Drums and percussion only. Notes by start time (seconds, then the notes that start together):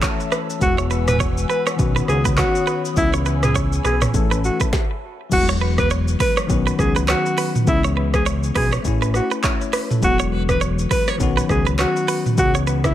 0.02 kick, clap, shaker
0.20 shaker
0.32 cross-stick, shaker
0.50 shaker
0.61 kick, shaker
0.78 shaker
0.91 shaker
1.08 cross-stick, mid tom, shaker
1.20 kick, shaker
1.37 shaker
1.50 shaker
1.67 cross-stick, shaker
1.79 kick, shaker
1.97 shaker
2.08 cross-stick, shaker
2.25 kick, shaker
2.38 kick, cross-stick, clap, shaker
2.55 shaker
2.67 shaker
2.85 shaker
2.97 kick, shaker
3.13 shaker
3.26 shaker
3.43 cross-stick, mid tom, shaker
3.55 kick, shaker
3.73 shaker
3.85 cross-stick, shaker
4.02 cross-stick, mid tom, shaker
4.14 kick, shaker
4.32 shaker
4.44 shaker
4.60 kick, shaker
4.73 kick, snare
5.32 kick, crash, shaker
5.48 shaker
5.78 kick, cross-stick, shaker
5.90 shaker
6.08 shaker
6.20 kick, open hi-hat, shaker
6.37 cross-stick, shaker
6.50 kick, shaker
6.67 shaker
6.79 kick, cross-stick, shaker
6.96 shaker
7.08 cross-stick, clap, shaker
7.26 shaker
7.38 open hi-hat, shaker
7.55 mid tom, shaker
7.67 kick, shaker
7.84 shaker
8.14 kick, cross-stick, shaker
8.26 shaker
8.43 shaker
8.55 kick, cross-stick, open hi-hat, shaker
8.72 cross-stick, shaker
8.85 kick, shaker
9.02 shaker
9.14 cross-stick, shaker
9.31 shaker
9.44 kick, clap, shaker
9.61 shaker
9.73 cross-stick, open hi-hat, shaker
9.91 mid tom, shaker
10.02 kick, shaker
10.19 shaker
10.49 kick, cross-stick, shaker
10.61 shaker
10.79 shaker
10.91 kick, open hi-hat, shaker
11.08 cross-stick, shaker
11.20 kick, shaker
11.38 shaker
11.49 kick, cross-stick, shaker
11.66 shaker
11.79 cross-stick, clap, shaker
11.96 shaker
12.08 open hi-hat, shaker
12.26 mid tom, shaker
12.38 kick, shaker
12.55 shaker
12.67 shaker
12.84 kick, cross-stick, shaker